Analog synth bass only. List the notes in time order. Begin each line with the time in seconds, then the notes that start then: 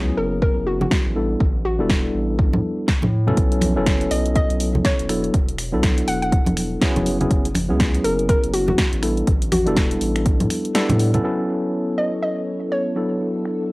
Already playing: C#2
0.18 F#1
0.57 F#1
1.06 A1
1.40 A1
1.80 E1
2.14 A1
2.53 A2
3.03 A2
3.37 B1
3.76 F#1
4.11 B1
4.50 B1
4.99 E1
5.34 E1
5.73 B1
6.08 E1
6.47 E1
6.96 F#1
7.31 F#1
7.70 C#2
8.04 F#1
8.44 F#1
8.93 A1
9.27 A1
9.67 E1
10.01 A1
10.40 A2
10.89 A2